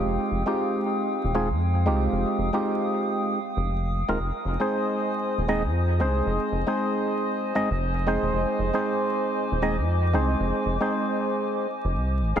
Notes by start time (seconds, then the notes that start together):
Already playing: G#3 C4 D#4 F4 G4 F5 G5 D#6
0.05 F1
0.31 F1
0.46 G#3 C4 D#4 F4 G4
1.24 D#1
1.35 G#3 C4 D#4 F4 G#4
1.50 F2
1.86 C2 G#3 C4 D#4 F4 G4
2.12 F1
2.38 F1
2.53 G#3 C4 D#4 F4 G4
3.57 F1
4.08 D#1 G#3 C4 D#4 F4 A#4
4.19 F1 C5 D#5 G#5
4.45 F1
4.60 G#3 C4 D#4 G#4 C5
5.38 D#1
5.48 G#3 C4 D#4 G#4 D#5
5.64 F2
6.00 C2 G#3 C4 D#4 G#4 C5
6.26 F1
6.52 F1
6.67 G#3 C4 D#4 G#4 C5
7.55 G#3 C4 D#4 G#4 D#5
7.71 F1
8.07 G#3 C4 D#4 G#4 C5
8.23 D#1
8.33 F1 D6
8.59 F1
8.74 G#3 C4 D#4 G#4 C5
9.52 D#1
9.62 G#3 C4 D#4 G#4 D#5
9.78 F2
10.13 C2 G#3 C4 D#4 G#4 C5
10.40 F1
10.66 F1
10.80 G#3 C4 D#4 G#4 C5
11.85 F1
11.95 C2
12.21 G#1
12.36 D#1 G#3 C4 D#4 G#4 F5